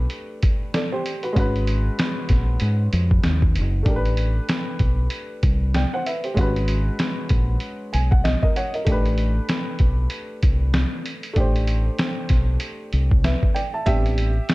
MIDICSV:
0, 0, Header, 1, 4, 480
1, 0, Start_track
1, 0, Tempo, 625000
1, 1048, Time_signature, 4, 2, 24, 8
1, 11171, End_track
2, 0, Start_track
2, 0, Title_t, "Upright piano"
2, 0, Program_c, 0, 0
2, 0, Note_on_c, 0, 57, 78
2, 0, Note_on_c, 0, 62, 68
2, 0, Note_on_c, 0, 67, 67
2, 0, Note_on_c, 0, 71, 75
2, 549, Note_off_c, 0, 67, 0
2, 558, Note_off_c, 0, 71, 0
2, 569, Note_on_c, 0, 74, 59
2, 576, Note_on_c, 0, 69, 55
2, 701, Note_off_c, 0, 74, 0
2, 705, Note_off_c, 0, 69, 0
2, 710, Note_on_c, 0, 72, 78
2, 713, Note_on_c, 0, 67, 63
2, 937, Note_off_c, 0, 72, 0
2, 939, Note_off_c, 0, 67, 0
2, 946, Note_on_c, 0, 71, 60
2, 951, Note_on_c, 0, 66, 51
2, 1010, Note_off_c, 0, 57, 0
2, 1019, Note_off_c, 0, 62, 0
2, 1019, Note_on_c, 0, 56, 75
2, 1036, Note_on_c, 0, 61, 60
2, 1043, Note_off_c, 0, 66, 0
2, 1054, Note_on_c, 0, 66, 69
2, 1060, Note_off_c, 0, 71, 0
2, 1072, Note_on_c, 0, 71, 86
2, 2923, Note_off_c, 0, 56, 0
2, 2931, Note_off_c, 0, 61, 0
2, 2941, Note_off_c, 0, 66, 0
2, 2941, Note_on_c, 0, 57, 64
2, 2949, Note_off_c, 0, 71, 0
2, 2958, Note_on_c, 0, 62, 67
2, 2975, Note_on_c, 0, 67, 63
2, 2993, Note_on_c, 0, 70, 65
2, 3039, Note_off_c, 0, 70, 0
2, 3042, Note_on_c, 0, 71, 83
2, 4383, Note_off_c, 0, 67, 0
2, 4417, Note_off_c, 0, 71, 0
2, 4419, Note_on_c, 0, 79, 55
2, 4422, Note_on_c, 0, 74, 45
2, 4546, Note_off_c, 0, 79, 0
2, 4548, Note_off_c, 0, 74, 0
2, 4559, Note_on_c, 0, 78, 73
2, 4564, Note_on_c, 0, 72, 62
2, 4649, Note_off_c, 0, 78, 0
2, 4652, Note_off_c, 0, 72, 0
2, 4656, Note_on_c, 0, 76, 65
2, 4661, Note_on_c, 0, 71, 55
2, 4785, Note_off_c, 0, 76, 0
2, 4787, Note_off_c, 0, 71, 0
2, 4791, Note_on_c, 0, 72, 54
2, 4797, Note_on_c, 0, 67, 51
2, 4844, Note_off_c, 0, 57, 0
2, 4853, Note_off_c, 0, 62, 0
2, 4871, Note_on_c, 0, 56, 74
2, 4887, Note_on_c, 0, 61, 60
2, 4903, Note_on_c, 0, 66, 70
2, 4922, Note_on_c, 0, 71, 81
2, 5018, Note_off_c, 0, 72, 0
2, 5021, Note_off_c, 0, 67, 0
2, 6081, Note_off_c, 0, 71, 0
2, 6089, Note_on_c, 0, 80, 67
2, 6218, Note_off_c, 0, 80, 0
2, 6229, Note_on_c, 0, 78, 63
2, 6322, Note_off_c, 0, 78, 0
2, 6329, Note_on_c, 0, 75, 73
2, 6458, Note_off_c, 0, 75, 0
2, 6470, Note_on_c, 0, 75, 74
2, 6479, Note_on_c, 0, 70, 56
2, 6569, Note_off_c, 0, 70, 0
2, 6575, Note_on_c, 0, 78, 68
2, 6579, Note_on_c, 0, 73, 61
2, 6704, Note_off_c, 0, 78, 0
2, 6705, Note_off_c, 0, 75, 0
2, 6706, Note_off_c, 0, 73, 0
2, 6716, Note_on_c, 0, 75, 62
2, 6720, Note_on_c, 0, 70, 50
2, 6769, Note_off_c, 0, 56, 0
2, 6777, Note_off_c, 0, 61, 0
2, 6785, Note_off_c, 0, 66, 0
2, 6796, Note_on_c, 0, 57, 75
2, 6814, Note_on_c, 0, 62, 69
2, 6832, Note_on_c, 0, 67, 66
2, 6849, Note_on_c, 0, 71, 84
2, 6940, Note_off_c, 0, 75, 0
2, 6942, Note_off_c, 0, 70, 0
2, 8691, Note_off_c, 0, 57, 0
2, 8701, Note_off_c, 0, 62, 0
2, 8705, Note_on_c, 0, 57, 75
2, 8710, Note_off_c, 0, 67, 0
2, 8718, Note_off_c, 0, 71, 0
2, 8723, Note_on_c, 0, 62, 68
2, 8737, Note_on_c, 0, 67, 70
2, 8757, Note_on_c, 0, 72, 81
2, 10154, Note_off_c, 0, 72, 0
2, 10171, Note_on_c, 0, 76, 61
2, 10176, Note_on_c, 0, 71, 50
2, 10398, Note_off_c, 0, 76, 0
2, 10400, Note_off_c, 0, 71, 0
2, 10402, Note_on_c, 0, 79, 66
2, 10409, Note_on_c, 0, 74, 57
2, 10538, Note_off_c, 0, 79, 0
2, 10541, Note_off_c, 0, 74, 0
2, 10551, Note_on_c, 0, 81, 66
2, 10555, Note_on_c, 0, 76, 54
2, 10606, Note_off_c, 0, 57, 0
2, 10615, Note_off_c, 0, 62, 0
2, 10622, Note_off_c, 0, 67, 0
2, 10632, Note_off_c, 0, 76, 0
2, 10644, Note_on_c, 0, 55, 55
2, 10644, Note_on_c, 0, 76, 101
2, 10649, Note_on_c, 0, 59, 45
2, 10649, Note_on_c, 0, 60, 49
2, 10651, Note_on_c, 0, 62, 55
2, 10654, Note_on_c, 0, 67, 90
2, 10778, Note_off_c, 0, 81, 0
2, 10980, Note_off_c, 0, 55, 0
2, 10983, Note_off_c, 0, 59, 0
2, 10983, Note_off_c, 0, 60, 0
2, 10984, Note_off_c, 0, 62, 0
2, 11171, Note_off_c, 0, 67, 0
2, 11171, Note_off_c, 0, 76, 0
2, 11171, End_track
3, 0, Start_track
3, 0, Title_t, "Fingered electric bass"
3, 0, Program_c, 1, 33
3, 1050, Note_on_c, 1, 32, 82
3, 1446, Note_off_c, 1, 32, 0
3, 1764, Note_on_c, 1, 34, 70
3, 1965, Note_off_c, 1, 34, 0
3, 2008, Note_on_c, 1, 44, 94
3, 2207, Note_off_c, 1, 44, 0
3, 2252, Note_on_c, 1, 41, 83
3, 2449, Note_off_c, 1, 41, 0
3, 2494, Note_on_c, 1, 39, 69
3, 2736, Note_on_c, 1, 30, 78
3, 2747, Note_off_c, 1, 39, 0
3, 2931, Note_off_c, 1, 30, 0
3, 2970, Note_on_c, 1, 33, 88
3, 3366, Note_off_c, 1, 33, 0
3, 3692, Note_on_c, 1, 35, 77
3, 3889, Note_off_c, 1, 35, 0
3, 4176, Note_on_c, 1, 36, 85
3, 4487, Note_off_c, 1, 36, 0
3, 4892, Note_on_c, 1, 32, 92
3, 5288, Note_off_c, 1, 32, 0
3, 5613, Note_on_c, 1, 34, 85
3, 5810, Note_off_c, 1, 34, 0
3, 6100, Note_on_c, 1, 35, 74
3, 6409, Note_off_c, 1, 35, 0
3, 6813, Note_on_c, 1, 33, 88
3, 7208, Note_off_c, 1, 33, 0
3, 7530, Note_on_c, 1, 35, 79
3, 7728, Note_off_c, 1, 35, 0
3, 8013, Note_on_c, 1, 36, 83
3, 8325, Note_off_c, 1, 36, 0
3, 8728, Note_on_c, 1, 33, 90
3, 9125, Note_off_c, 1, 33, 0
3, 9449, Note_on_c, 1, 35, 74
3, 9647, Note_off_c, 1, 35, 0
3, 9932, Note_on_c, 1, 36, 75
3, 10245, Note_off_c, 1, 36, 0
3, 10652, Note_on_c, 1, 33, 91
3, 11048, Note_off_c, 1, 33, 0
3, 11171, End_track
4, 0, Start_track
4, 0, Title_t, "Drums"
4, 76, Note_on_c, 9, 42, 76
4, 153, Note_off_c, 9, 42, 0
4, 327, Note_on_c, 9, 42, 75
4, 331, Note_on_c, 9, 36, 105
4, 404, Note_off_c, 9, 42, 0
4, 408, Note_off_c, 9, 36, 0
4, 569, Note_on_c, 9, 42, 75
4, 570, Note_on_c, 9, 38, 92
4, 646, Note_off_c, 9, 42, 0
4, 647, Note_off_c, 9, 38, 0
4, 812, Note_on_c, 9, 42, 70
4, 889, Note_off_c, 9, 42, 0
4, 944, Note_on_c, 9, 42, 49
4, 1021, Note_off_c, 9, 42, 0
4, 1047, Note_on_c, 9, 36, 106
4, 1048, Note_on_c, 9, 42, 72
4, 1124, Note_off_c, 9, 36, 0
4, 1125, Note_off_c, 9, 42, 0
4, 1196, Note_on_c, 9, 42, 43
4, 1273, Note_off_c, 9, 42, 0
4, 1286, Note_on_c, 9, 42, 70
4, 1363, Note_off_c, 9, 42, 0
4, 1526, Note_on_c, 9, 42, 81
4, 1532, Note_on_c, 9, 38, 105
4, 1603, Note_off_c, 9, 42, 0
4, 1609, Note_off_c, 9, 38, 0
4, 1757, Note_on_c, 9, 42, 68
4, 1765, Note_on_c, 9, 36, 76
4, 1773, Note_on_c, 9, 38, 34
4, 1834, Note_off_c, 9, 42, 0
4, 1842, Note_off_c, 9, 36, 0
4, 1849, Note_off_c, 9, 38, 0
4, 1994, Note_on_c, 9, 42, 76
4, 2071, Note_off_c, 9, 42, 0
4, 2247, Note_on_c, 9, 42, 71
4, 2324, Note_off_c, 9, 42, 0
4, 2389, Note_on_c, 9, 36, 95
4, 2466, Note_off_c, 9, 36, 0
4, 2484, Note_on_c, 9, 42, 68
4, 2485, Note_on_c, 9, 38, 82
4, 2561, Note_off_c, 9, 42, 0
4, 2562, Note_off_c, 9, 38, 0
4, 2629, Note_on_c, 9, 36, 85
4, 2705, Note_off_c, 9, 36, 0
4, 2731, Note_on_c, 9, 42, 78
4, 2807, Note_off_c, 9, 42, 0
4, 2964, Note_on_c, 9, 42, 78
4, 2965, Note_on_c, 9, 36, 116
4, 3040, Note_off_c, 9, 42, 0
4, 3042, Note_off_c, 9, 36, 0
4, 3114, Note_on_c, 9, 42, 43
4, 3191, Note_off_c, 9, 42, 0
4, 3204, Note_on_c, 9, 42, 69
4, 3281, Note_off_c, 9, 42, 0
4, 3446, Note_on_c, 9, 42, 78
4, 3452, Note_on_c, 9, 38, 108
4, 3523, Note_off_c, 9, 42, 0
4, 3528, Note_off_c, 9, 38, 0
4, 3681, Note_on_c, 9, 42, 69
4, 3686, Note_on_c, 9, 36, 90
4, 3758, Note_off_c, 9, 42, 0
4, 3763, Note_off_c, 9, 36, 0
4, 3918, Note_on_c, 9, 42, 81
4, 3995, Note_off_c, 9, 42, 0
4, 4169, Note_on_c, 9, 42, 71
4, 4172, Note_on_c, 9, 36, 102
4, 4246, Note_off_c, 9, 42, 0
4, 4248, Note_off_c, 9, 36, 0
4, 4412, Note_on_c, 9, 38, 85
4, 4412, Note_on_c, 9, 42, 69
4, 4488, Note_off_c, 9, 42, 0
4, 4489, Note_off_c, 9, 38, 0
4, 4658, Note_on_c, 9, 42, 69
4, 4735, Note_off_c, 9, 42, 0
4, 4791, Note_on_c, 9, 42, 53
4, 4868, Note_off_c, 9, 42, 0
4, 4892, Note_on_c, 9, 36, 108
4, 4894, Note_on_c, 9, 42, 78
4, 4969, Note_off_c, 9, 36, 0
4, 4970, Note_off_c, 9, 42, 0
4, 5041, Note_on_c, 9, 42, 41
4, 5118, Note_off_c, 9, 42, 0
4, 5129, Note_on_c, 9, 42, 77
4, 5206, Note_off_c, 9, 42, 0
4, 5368, Note_on_c, 9, 42, 90
4, 5374, Note_on_c, 9, 38, 104
4, 5445, Note_off_c, 9, 42, 0
4, 5451, Note_off_c, 9, 38, 0
4, 5601, Note_on_c, 9, 42, 67
4, 5610, Note_on_c, 9, 36, 88
4, 5678, Note_off_c, 9, 42, 0
4, 5687, Note_off_c, 9, 36, 0
4, 5838, Note_on_c, 9, 42, 72
4, 5915, Note_off_c, 9, 42, 0
4, 6095, Note_on_c, 9, 42, 76
4, 6172, Note_off_c, 9, 42, 0
4, 6236, Note_on_c, 9, 36, 97
4, 6313, Note_off_c, 9, 36, 0
4, 6336, Note_on_c, 9, 42, 73
4, 6337, Note_on_c, 9, 38, 91
4, 6413, Note_off_c, 9, 42, 0
4, 6414, Note_off_c, 9, 38, 0
4, 6474, Note_on_c, 9, 36, 86
4, 6551, Note_off_c, 9, 36, 0
4, 6576, Note_on_c, 9, 42, 74
4, 6653, Note_off_c, 9, 42, 0
4, 6712, Note_on_c, 9, 42, 50
4, 6788, Note_off_c, 9, 42, 0
4, 6809, Note_on_c, 9, 42, 89
4, 6810, Note_on_c, 9, 36, 112
4, 6886, Note_off_c, 9, 42, 0
4, 6887, Note_off_c, 9, 36, 0
4, 6954, Note_on_c, 9, 42, 41
4, 7031, Note_off_c, 9, 42, 0
4, 7048, Note_on_c, 9, 42, 71
4, 7125, Note_off_c, 9, 42, 0
4, 7286, Note_on_c, 9, 42, 79
4, 7292, Note_on_c, 9, 38, 100
4, 7363, Note_off_c, 9, 42, 0
4, 7368, Note_off_c, 9, 38, 0
4, 7517, Note_on_c, 9, 42, 64
4, 7527, Note_on_c, 9, 36, 81
4, 7594, Note_off_c, 9, 42, 0
4, 7603, Note_off_c, 9, 36, 0
4, 7756, Note_on_c, 9, 42, 75
4, 7833, Note_off_c, 9, 42, 0
4, 8007, Note_on_c, 9, 42, 71
4, 8011, Note_on_c, 9, 36, 93
4, 8084, Note_off_c, 9, 42, 0
4, 8088, Note_off_c, 9, 36, 0
4, 8246, Note_on_c, 9, 42, 72
4, 8247, Note_on_c, 9, 38, 101
4, 8323, Note_off_c, 9, 42, 0
4, 8324, Note_off_c, 9, 38, 0
4, 8491, Note_on_c, 9, 42, 72
4, 8568, Note_off_c, 9, 42, 0
4, 8627, Note_on_c, 9, 42, 51
4, 8703, Note_off_c, 9, 42, 0
4, 8725, Note_on_c, 9, 42, 84
4, 8727, Note_on_c, 9, 36, 103
4, 8802, Note_off_c, 9, 42, 0
4, 8804, Note_off_c, 9, 36, 0
4, 8876, Note_on_c, 9, 42, 47
4, 8953, Note_off_c, 9, 42, 0
4, 8966, Note_on_c, 9, 42, 70
4, 9043, Note_off_c, 9, 42, 0
4, 9205, Note_on_c, 9, 42, 83
4, 9210, Note_on_c, 9, 38, 112
4, 9281, Note_off_c, 9, 42, 0
4, 9287, Note_off_c, 9, 38, 0
4, 9438, Note_on_c, 9, 42, 75
4, 9447, Note_on_c, 9, 36, 86
4, 9454, Note_on_c, 9, 38, 31
4, 9515, Note_off_c, 9, 42, 0
4, 9523, Note_off_c, 9, 36, 0
4, 9531, Note_off_c, 9, 38, 0
4, 9676, Note_on_c, 9, 42, 81
4, 9753, Note_off_c, 9, 42, 0
4, 9927, Note_on_c, 9, 42, 71
4, 10004, Note_off_c, 9, 42, 0
4, 10072, Note_on_c, 9, 36, 94
4, 10149, Note_off_c, 9, 36, 0
4, 10170, Note_on_c, 9, 42, 75
4, 10171, Note_on_c, 9, 38, 97
4, 10247, Note_off_c, 9, 42, 0
4, 10248, Note_off_c, 9, 38, 0
4, 10313, Note_on_c, 9, 36, 86
4, 10390, Note_off_c, 9, 36, 0
4, 10413, Note_on_c, 9, 42, 74
4, 10490, Note_off_c, 9, 42, 0
4, 10648, Note_on_c, 9, 42, 88
4, 10651, Note_on_c, 9, 36, 105
4, 10725, Note_off_c, 9, 42, 0
4, 10728, Note_off_c, 9, 36, 0
4, 10796, Note_on_c, 9, 42, 41
4, 10873, Note_off_c, 9, 42, 0
4, 10889, Note_on_c, 9, 42, 72
4, 10966, Note_off_c, 9, 42, 0
4, 11127, Note_on_c, 9, 42, 81
4, 11133, Note_on_c, 9, 38, 107
4, 11171, Note_off_c, 9, 38, 0
4, 11171, Note_off_c, 9, 42, 0
4, 11171, End_track
0, 0, End_of_file